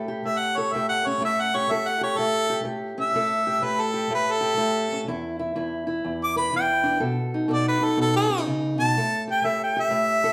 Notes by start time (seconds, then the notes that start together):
Already playing: A2 A4
0.08 G4
0.25 A2 E5
0.39 F#5
0.57 A4 C#5
0.73 A2 G4 E5
0.89 F#5
1.07 C#4 C#5
1.21 A2 A4
1.25 E5
1.41 F#5
1.55 G4 C#5
1.70 A2 A4 E5
1.88 F#5
2.01 G4 C#5
2.18 A2 A4
2.50 G4
2.64 A2 G4
2.98 C#4 E5
3.15 A2 A4
3.47 G4
3.62 A2 A4 B4
3.81 A4
3.94 G4
4.10 A2
4.15 B4
4.31 A4
4.41 G4
4.57 A2 G4
4.92 C#4
5.07 E2 E4
5.39 E4
5.55 E2 E4
5.87 E4
6.04 E2
6.24 D6
6.36 B4 B5
6.53 E2 E4 G5
6.83 D4
7.00 B2 A4
7.34 D#4
7.48 B2 A4
7.53 D5
7.68 B4
7.81 D#4 A4
7.97 B2
8.02 A4
8.17 A4
8.30 C#4
8.38 D#4
8.47 C#3
8.78 B2 A5
8.97 A2 A4
9.28 G4 G5
9.44 A2 A4 E5
9.64 G5
9.76 G4 E5
9.90 A2
10.24 A4